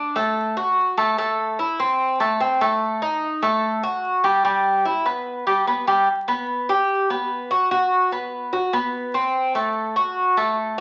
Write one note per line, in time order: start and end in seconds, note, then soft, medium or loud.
0.00 0.14 D4 medium
0.16 0.55 A3 medium
0.57 0.96 F#4 medium
0.98 1.17 A3 medium
1.18 1.58 A3 medium
1.59 1.79 E4 medium
1.80 2.19 C4 medium
2.20 2.40 A3 medium
2.41 2.60 C4 medium
2.61 3.00 A3 medium
3.02 3.41 D#4 medium
3.42 3.82 A3 medium
3.83 4.23 F#4 medium
4.24 4.43 G3 medium
4.45 4.84 G3 medium
4.85 5.05 E4 medium
5.06 5.45 B3 medium
5.47 5.66 G3 medium
5.67 5.87 B3 medium
5.87 6.07 G3 medium
6.28 6.68 B3 medium
6.69 7.09 G4 medium
7.10 7.50 B3 medium
7.51 7.71 F#4 medium
7.71 8.11 F#4 medium
8.12 8.52 B3 medium
8.53 8.73 F#4 medium
8.73 9.13 B3 medium
9.14 9.54 C4 medium
9.55 9.95 A3 medium
9.96 10.36 F#4 medium
10.37 10.77 A3 medium